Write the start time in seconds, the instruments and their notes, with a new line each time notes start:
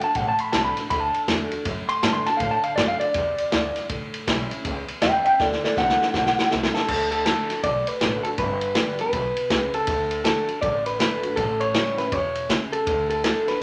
0.01 steel-string acoustic guitar D4 F#4, clean electric guitar A5, muted upright bass stroke, ride
0.15 upright bass A1, steel-string acoustic guitar A2, clean electric guitar F#5, kick, ride
0.29 clean electric guitar A5
0.39 clean electric guitar B5, muted upright bass stroke, ride
0.52 upright bass C2, steel-string acoustic guitar D3 A3 D4 F#4, clean electric guitar A5, snare, ride
0.65 clean electric guitar B5
0.77 steel-string acoustic guitar D4 F#4, muted upright bass stroke, snare, ride
0.90 upright bass D2, steel-string acoustic guitar D3, clean electric guitar B5, kick, ride
1.00 clean electric guitar A5
1.14 muted upright bass stroke, ride
1.28 upright bass E2, steel-string acoustic guitar D3 A3 D4 F#4, kick, snare, ride
1.52 steel-string acoustic guitar D4 F#4, muted upright bass stroke, ride
1.65 upright bass F#2, steel-string acoustic guitar A2, kick, ride
1.89 clean electric guitar C6, muted upright bass stroke, ride
2.02 upright bass G2, steel-string acoustic guitar D3 A3 D4 F#4, clean electric guitar A5, snare, ride
2.13 clean electric guitar C6
2.26 steel-string acoustic guitar D4 F#4, clean electric guitar A5, muted upright bass stroke, snare, ride
2.37 upright bass A2, steel-string acoustic guitar D3, clean electric guitar F5, kick, ride
2.51 clean electric guitar A5
2.64 clean electric guitar F5, ride
2.76 upright bass F#2, steel-string acoustic guitar D3 A3 D4, clean electric guitar D5, kick, snare, ride
2.80 steel-string acoustic guitar F#4
2.88 clean electric guitar F5
3.00 steel-string acoustic guitar F#4, clean electric guitar D5, muted upright bass stroke, ride
3.04 steel-string acoustic guitar D4
3.14 upright bass E2, steel-string acoustic guitar C3, kick, ride
3.38 muted upright bass stroke, ride
3.52 upright bass D2, steel-string acoustic guitar G2, snare, ride
3.76 snare, ride
3.89 upright bass A1, steel-string acoustic guitar A2, kick, ride
4.14 ride
4.27 upright bass B1, steel-string acoustic guitar E3 G3 C#4 E4, kick, snare, ride
4.51 steel-string acoustic guitar C#4 E4, muted upright bass stroke, ride
4.65 upright bass C#2, steel-string acoustic guitar E2, kick, ride
4.88 muted upright bass stroke, ride
5.02 upright bass E2, steel-string acoustic guitar E3 G3 C#4 E4, clean electric guitar E5 G5, snare, ride
5.25 steel-string acoustic guitar C#4 E4, clean electric guitar E5 G5, muted upright bass stroke, ride
5.40 upright bass D2, steel-string acoustic guitar D3, clean electric guitar A4 D5, kick, snare
5.52 snare
5.64 clean electric guitar A4 D5, muted upright bass stroke, snare
5.76 upright bass C2, steel-string acoustic guitar D3 A3 D4 F#4, clean electric guitar F#5, kick, snare
5.90 snare
6.00 steel-string acoustic guitar D4 F#4, muted upright bass stroke, snare
6.14 upright bass B1, steel-string acoustic guitar A2, kick, snare
6.26 snare
6.39 snare
6.50 upright bass C2, steel-string acoustic guitar D3 A3 D4 F#4, snare
6.63 snare
6.75 steel-string acoustic guitar D4 F#4, clean electric guitar A4, snare
6.88 upright bass D2, steel-string acoustic guitar D3, kick, crash
7.11 clean electric guitar A4, ride
7.26 steel-string acoustic guitar D3 A3 D4 F#4, clean electric guitar A4, snare, ride
7.50 steel-string acoustic guitar D4 F#4, muted upright bass stroke, snare, ride
7.63 upright bass B1, steel-string acoustic guitar A2, clean electric guitar D5, kick, ride
7.87 clean electric guitar B4, ride
8.01 upright bass A1, steel-string acoustic guitar D3 A3 D4 F#4, snare, ride
8.23 steel-string acoustic guitar D4 F#4, clean electric guitar A4, muted upright bass stroke, ride
8.38 upright bass G1, steel-string acoustic guitar G2, clean electric guitar B4, kick, ride
8.61 ride
8.75 steel-string acoustic guitar D3 G3 B3 G4, snare, ride
8.99 steel-string acoustic guitar B3 G4, clean electric guitar B4, muted upright bass stroke, ride
9.13 upright bass B1, steel-string acoustic guitar B2, kick, ride
9.37 muted upright bass stroke, ride
9.50 upright bass C#2, steel-string acoustic guitar C#3, kick, snare, ride
9.74 clean electric guitar A4, muted upright bass stroke, ride
9.87 upright bass D2, steel-string acoustic guitar D3, kick, ride
10.11 ride
10.24 steel-string acoustic guitar D3 A3 D4 F#4, clean electric guitar A4, snare, ride
10.48 steel-string acoustic guitar D4 F#4, muted upright bass stroke, ride
10.62 upright bass A1, steel-string acoustic guitar A2, clean electric guitar D5, kick, ride
10.86 clean electric guitar B4, ride
10.99 steel-string acoustic guitar D3 A3 D4 F#4, clean electric guitar B4, snare, ride
11.23 steel-string acoustic guitar D4 F#4, muted upright bass stroke, ride
11.36 upright bass A1, steel-string acoustic guitar A2, clean electric guitar A4, kick, ride
11.60 clean electric guitar C#5, ride
11.74 steel-string acoustic guitar E3 G3 C#4 E4, snare, ride
11.97 steel-string acoustic guitar C#4 E4, clean electric guitar B4, muted upright bass stroke, snare, ride
12.12 upright bass E2, steel-string acoustic guitar B2, clean electric guitar C#5, kick, ride
12.35 ride
12.49 steel-string acoustic guitar C#3, kick, snare, ride
12.73 clean electric guitar A4, muted upright bass stroke, ride
12.87 upright bass D2, steel-string acoustic guitar D3, kick, ride
13.10 clean electric guitar A4, ride
13.24 steel-string acoustic guitar D3 A3 D4 F#4, clean electric guitar A4, snare, ride
13.47 steel-string acoustic guitar D4 F#4, clean electric guitar B4, muted upright bass stroke, snare, ride